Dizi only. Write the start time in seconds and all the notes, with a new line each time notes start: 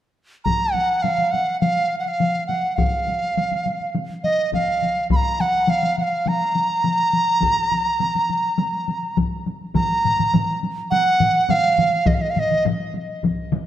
0.44 A#5
0.73 F#5
1.02 F5
1.31 F#5
1.61 F5
1.99 F#5
2.08 F5
2.47 F#5
2.76 F5
4.24 D#5
4.54 F5
5.11 B5
5.16 A#5
5.41 F#5
5.70 F5
5.99 F#5
6.03 F5
6.28 A#5
9.75 A#5
10.91 F#5
11.50 F5
12.07 D#5
12.14 F5
12.21 D#5
12.30 F5
12.39 D#5